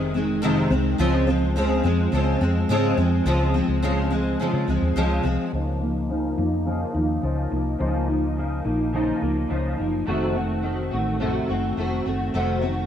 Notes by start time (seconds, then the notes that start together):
Already playing: F1 C3 D#3 G#3 C4
0.14 D#3 G#3 C4
0.42 F2 C3 D#3 G#3 C4
0.70 C2 D#3 G#3 C4
0.98 C#2 C#3 F3 G#3 C4
1.27 F3 G#3 C4
1.56 C#3 F3 G#3 C4
1.83 F2 F3 G#3 C4
2.12 C#2 C#3 F3 G#3 C4
2.41 F2 F3 G#3 C4
2.69 G#2 C#3 F3 G#3 C4
2.97 F2 F3 G#3 C4
3.25 C#2 C#3 F3 G#3 C4
3.54 F3 G#3 C4
3.68 C#2
3.82 C#3 F3 G#3 C4
4.10 F3 G#3 C4
4.40 C#3 F3 G#3 C4
4.53 C#3
4.68 C#2 F3 G#3 C4
4.82 D#2
4.96 C#2 C#3 F3 G#3 C4
5.23 C2 F3 G#3 C4
5.52 C#2 C#3 F3 A#3 D#4
5.81 F3 A#3 D#4
6.08 C#3 F3 A#3 D#4
6.37 F2 F3 A#3 D#4
6.65 C#3 F3 A#3 D#4
6.93 D#2 F3 A#3 D#4
7.21 C#2 C#3 F3 A#3 D#4
7.50 C2 F3 A#3 D#4
7.78 C#2 C#3 F3 A#3 D#4
8.08 F3 A#3 D#4
8.36 C#3 F3 A#3 D#4
8.64 A#1 F3 A#3 D#4
8.93 C#3 F3 A#3 D#4
9.21 C#2 F3 A#3 D#4
9.49 C#2 C#3 F3 A#3 D#4
9.77 F#1 F3 A#3 D#4
10.06 F1 F2 C3 D#3 A3 C4 F#4
10.34 D#3 A3 C4 F#4
10.63 D#3 A3 C4 F#4
10.91 A1 D#3 A3 C4 F#4
11.20 F2 C3 D#3 A3 C4 F#4
11.49 F#1 D#3 A3 C4 F#4
11.77 F1 D#3 A3 C4 F#4
12.05 F#1 D#3 A3 C4 F#4
12.34 F1 F2 C3 D#3 A3 C4 F#4
12.61 D#3 A3 C4 F#4